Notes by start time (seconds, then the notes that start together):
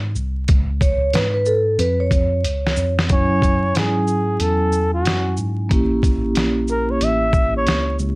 Already playing: G#2
0.15 C2, shaker
0.48 C#2, kick, closed hi-hat
0.81 C#5, kick, closed hi-hat, shaker
1.13 G#2 B4, snare, closed hi-hat
1.34 B4
1.46 A4, shaker
1.79 F2 B4, closed hi-hat
2.00 C#5
2.11 F2, kick, closed hi-hat, shaker
2.44 C#2, closed hi-hat
2.67 snare
2.76 F2, shaker
2.99 snare
3.08 F#2 F#3 C#4 E4, kick, closed hi-hat
3.12 C#5 G#5
3.42 kick, closed hi-hat, shaker
3.74 G#2 G#4, snare, closed hi-hat
4.07 shaker
4.40 E2 A4, closed hi-hat
4.72 shaker
4.94 F#4
5.05 F#2, snare, closed hi-hat
5.37 G#2, shaker
5.69 A1 A#3 C#4 E4, kick, closed hi-hat
5.73 G4
6.03 kick, closed hi-hat, shaker
6.35 A#1, snare, closed hi-hat
6.68 A#4, shaker
6.91 C#5
7.01 A1 E5, closed hi-hat
7.33 kick, shaker
7.57 C#5
7.66 C#2, snare, closed hi-hat
7.99 C#2, shaker